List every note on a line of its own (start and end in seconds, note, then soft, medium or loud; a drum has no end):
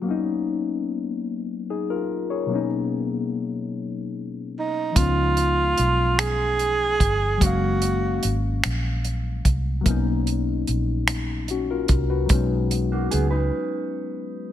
0.01 2.45 F#3 medium
0.01 2.45 A#3 medium
0.06 2.47 B3 medium
0.06 2.48 C#4 medium
0.11 1.68 D#4 medium
1.70 1.89 D#4 soft
1.70 1.89 G#4 medium
1.90 2.29 F4 soft
1.90 2.29 A#4 medium
2.30 2.69 G#4 soft
2.30 2.69 C#5 soft
2.46 4.89 B2 medium
2.46 4.90 F#3 medium
2.46 4.91 A#3 medium
2.52 4.92 B3 medium
2.52 4.93 C#4 medium
2.52 4.94 D#4 medium
4.59 4.98 D#4 medium
4.92 7.35 F3 medium
4.92 7.36 G#3 soft
4.96 5.74 C#2 medium
4.96 7.37 B3 soft
4.96 7.38 C#4 soft
4.96 6.20 F4 medium
4.96 kick loud
4.96 closed hi-hat medium
5.01 7.39 D#4 medium
5.37 closed hi-hat soft
5.78 6.97 B1 medium
5.78 closed hi-hat soft
6.19 7.45 G#4 loud
6.19 finger snap medium
6.19 closed hi-hat medium
6.59 closed hi-hat soft
7.00 7.37 G1 medium
7.00 kick medium
7.00 closed hi-hat medium
7.37 9.79 F#3 medium
7.37 9.81 G#3 soft
7.41 8.19 F#1 loud
7.41 9.82 A#3 soft
7.41 9.83 C#4 medium
7.41 8.34 F#4 medium
7.41 kick medium
7.41 closed hi-hat medium
7.46 9.84 F5 medium
7.82 closed hi-hat soft
8.23 8.60 G#1 medium
8.23 closed hi-hat medium
8.64 9.42 A#1 medium
8.64 finger snap medium
8.64 closed hi-hat medium
9.05 closed hi-hat soft
9.45 9.82 C2 medium
9.45 kick medium
9.45 closed hi-hat soft
9.81 12.24 F#3 medium
9.81 12.25 A#3 medium
9.86 10.64 B1 medium
9.86 12.27 B3 medium
9.86 11.47 C#4 medium
9.86 kick medium
9.86 closed hi-hat medium
9.91 11.48 D#4 medium
10.27 closed hi-hat soft
10.67 11.86 A#1 medium
10.67 closed hi-hat soft
11.08 finger snap medium
11.08 closed hi-hat medium
11.48 11.70 C#4 soft
11.48 11.69 F#4 medium
11.48 closed hi-hat soft
11.71 12.09 F4 soft
11.71 12.09 A#4 medium
11.88 12.26 C2 medium
11.88 kick medium
11.88 closed hi-hat medium
12.10 12.49 F#4 soft
12.10 12.49 B4 medium
12.26 14.53 F#3 medium
12.26 14.53 G#3 medium
12.26 kick loud
12.26 closed hi-hat medium
12.30 13.08 B1 medium
12.30 14.53 B3 medium
12.30 14.53 C#4 medium
12.35 14.53 D#4 medium
12.71 closed hi-hat soft
12.92 13.11 A#3 medium
12.92 13.11 F#4 medium
13.11 13.49 C#2 medium
13.11 13.31 B3 medium
13.11 13.30 G#4 medium
13.11 closed hi-hat medium
13.31 14.51 D#4 medium
13.31 14.50 B4 medium